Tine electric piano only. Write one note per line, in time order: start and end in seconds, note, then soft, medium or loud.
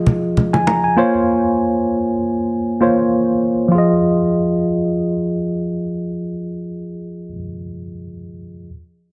0.00 0.99 F3 medium
0.00 0.97 F4 medium
0.00 0.99 G#4 medium
0.00 1.00 D#5 medium
0.53 0.66 G#5 medium
0.67 0.83 A#5 medium
0.84 1.13 G#5 medium
0.96 2.14 A#3 medium
0.96 2.14 F4 medium
0.96 2.15 C5 medium
0.96 2.15 C#5 loud
2.80 3.68 A#3 medium
2.80 3.69 F4 medium
2.80 3.69 C5 medium
2.80 3.70 C#5 medium
3.68 7.28 F3 medium
3.68 7.31 F4 medium
3.75 7.34 G#4 medium
3.75 7.38 D#5 medium